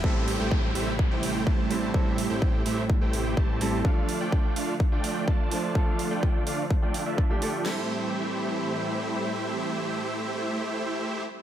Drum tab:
CC |--------|--------|--------|--------|
HH |-o-o-o-o|-o-o-o-o|-o-o-o-o|-o-o-o-o|
SD |--------|--------|--------|--------|
BD |o-o-o-o-|o-o-o-o-|o-o-o-o-|o-o-o-o-|

CC |x-------|--------|
HH |--------|--------|
SD |o-------|--------|
BD |--------|--------|